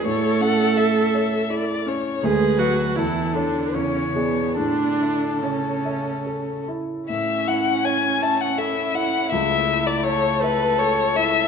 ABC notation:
X:1
M:3/4
L:1/16
Q:1/4=82
K:A
V:1 name="Violin"
c2 f2 e4 d2 c2 | B4 A4 c4 | A8- A2 z2 | e2 f2 g2 a f e2 f2 |
e3 d c2 B2 c2 e2 |]
V:2 name="Grand piano"
A,,2 C2 A2 c2 E2 C2 | D,,2 [FB]2 E,,2 [Ac]2 E,,2 [Gd]2 | A,,2 E2 c2 e2 A2 E2 | A,,2 E2 c2 e2 A2 E2 |
C,,2 E2 c2 e2 A2 E2 |]
V:3 name="Viola"
A8- A2 z2 | G2 F2 E2 D2 C2 B,2 | D4 C6 z2 | C12 |
A,12 |]
V:4 name="Cello" clef=bass
A,8- A,2 z2 | G,2 F,2 E,2 D,2 C,2 B,,2 | D,4 C,6 z2 | C8 E4- |
E4 A8 |]